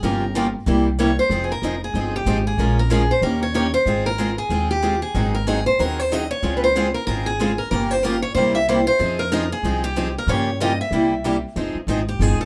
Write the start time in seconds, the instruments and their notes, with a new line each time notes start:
0.03 upright bass G1, steel-string acoustic guitar C#3 F3 A#3 F4 G4 A#4
0.35 steel-string acoustic guitar C#3 F3 A#3 F4 G4
0.66 upright bass C2, steel-string acoustic guitar C3 G3 A#3 E4 G4
0.99 steel-string acoustic guitar C3 G3 A#3 E4 G4 C#5
1.19 steel-string acoustic guitar C5
1.30 upright bass F1, steel-string acoustic guitar F3 C4 D#4 G#4
1.44 steel-string acoustic guitar G#4
1.52 steel-string acoustic guitar A#4
1.62 upright bass F1, steel-string acoustic guitar F3 C4 D#4 G#4
1.84 steel-string acoustic guitar G#4
1.94 upright bass G1, steel-string acoustic guitar F3 C4 D#4 G#4
2.16 steel-string acoustic guitar G4
2.26 upright bass G#1, steel-string acoustic guitar F3 C4 D#4 G#4
2.47 steel-string acoustic guitar G#4
2.58 upright bass A#1, steel-string acoustic guitar F3 G#3 C#4 F4 A#4
2.79 steel-string acoustic guitar A#4
2.90 steel-string acoustic guitar F3 G#3 C#4 F4 G#4 A#4
3.11 steel-string acoustic guitar C5
3.22 upright bass D#2, steel-string acoustic guitar D#3 A#3 C#4 G4 A#4
3.43 steel-string acoustic guitar C#5
3.54 steel-string acoustic guitar D#3 A#3 C#4 G4 A#4 C#5
3.74 steel-string acoustic guitar C5
3.86 upright bass G#1, steel-string acoustic guitar G#3 C4 F4 G#4
4.06 steel-string acoustic guitar A#4
4.18 steel-string acoustic guitar G#3 C4 F4 G#4
4.38 steel-string acoustic guitar G#4
4.50 upright bass D#2, steel-string acoustic guitar G#3 C4 F4 G#4
4.71 steel-string acoustic guitar G4
4.82 steel-string acoustic guitar G#3 C4 F4 G#4
5.02 steel-string acoustic guitar G#4
5.14 upright bass G#1, steel-string acoustic guitar D#3 F#3 C4 D#4 G#4
5.35 steel-string acoustic guitar A#4
5.47 steel-string acoustic guitar D#3 F#3 C4 D#4 G#4
5.66 steel-string acoustic guitar C5
5.79 upright bass D#2, steel-string acoustic guitar D#3 F#3 C4 D#4 G#4 A#4
5.99 steel-string acoustic guitar C5
6.12 steel-string acoustic guitar D#3 F#3 C4 D#4 G#4 D#5
6.31 steel-string acoustic guitar C#5
6.43 upright bass C#2, steel-string acoustic guitar C#3 G#3 C4 F4 G#4
6.57 steel-string acoustic guitar B4
6.64 steel-string acoustic guitar C5
6.76 steel-string acoustic guitar C#3 G#3 C4 F4 G#4
6.94 steel-string acoustic guitar A#4
7.07 upright bass G#1, steel-string acoustic guitar C#3 G#3 C4 F4 G#4 A#4
7.26 steel-string acoustic guitar G#4
7.40 steel-string acoustic guitar C#3 G#3 C4 F4 G#4
7.58 steel-string acoustic guitar A#4
7.71 upright bass G1, steel-string acoustic guitar C#3 F3 A#3 F4 G4 A#4
7.91 steel-string acoustic guitar C5
8.03 steel-string acoustic guitar C#3 F3 A#3 F4 G4 A#4
8.22 steel-string acoustic guitar C#5
8.35 upright bass C2, steel-string acoustic guitar C3 G3 A#3 E4 G4 C5
8.55 steel-string acoustic guitar E5
8.68 steel-string acoustic guitar C3 G3 A#3 E4 G4 C5
8.87 steel-string acoustic guitar C5
8.99 upright bass F2, steel-string acoustic guitar F3 C4 D#4 G#4
9.19 steel-string acoustic guitar A#4
9.32 steel-string acoustic guitar F3 C4 D#4 G#4 A#4
9.52 steel-string acoustic guitar G#4
9.63 upright bass C2, steel-string acoustic guitar F3 C4 D#4 G#4
9.84 steel-string acoustic guitar G4
9.97 steel-string acoustic guitar F3 C4 D#4 G#4
10.18 steel-string acoustic guitar A#4
10.27 upright bass G2, steel-string acoustic guitar C#3 F3 A#3 F4 G4 C#5
10.60 steel-string acoustic guitar C#3 F3 A#3 F4 G4 D#5
10.81 steel-string acoustic guitar E5
10.91 upright bass C2, steel-string acoustic guitar C3 G3 A#3 E4 G4
11.24 steel-string acoustic guitar C3 G3 A#3 E4 G4
11.56 upright bass F1, steel-string acoustic guitar F3 C4 D#4 G#4
11.75 muted upright bass stroke
11.87 upright bass G#1, steel-string acoustic guitar F3 C4 D#4 G#4
12.09 steel-string acoustic guitar G4
12.19 upright bass G1, steel-string acoustic guitar F3 C4 D#4 G#4
12.39 steel-string acoustic guitar A4, muted upright bass stroke